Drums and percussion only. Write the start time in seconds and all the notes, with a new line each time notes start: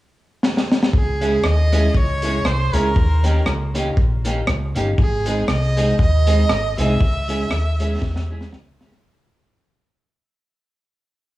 0.43 snare
0.57 snare
0.72 snare
0.83 snare
0.93 kick
1.21 closed hi-hat
1.44 cross-stick
1.72 closed hi-hat
1.95 kick
2.22 closed hi-hat
2.45 cross-stick
2.73 closed hi-hat
2.96 kick
3.24 closed hi-hat
3.46 cross-stick
3.75 closed hi-hat
3.97 kick
4.25 closed hi-hat
4.47 cross-stick
4.76 closed hi-hat
4.98 kick
5.26 closed hi-hat
5.48 cross-stick
5.77 closed hi-hat
5.99 kick
6.27 closed hi-hat
6.49 cross-stick
6.78 closed hi-hat
7.01 kick
7.29 closed hi-hat
7.51 cross-stick
7.80 closed hi-hat
8.02 kick, snare
8.16 snare
8.41 snare
8.53 snare
8.81 snare
8.92 snare